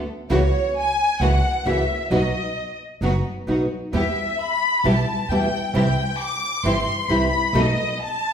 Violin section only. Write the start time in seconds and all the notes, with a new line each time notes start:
0.31 C#5
0.77 G#5
1.21 F#5
1.66 E5
2.11 D#5
3.94 E5
4.39 B5
4.85 A5
5.29 G5
5.74 G5
6.19 D6
6.64 C6
7.10 B5
7.55 D#5
8.01 A5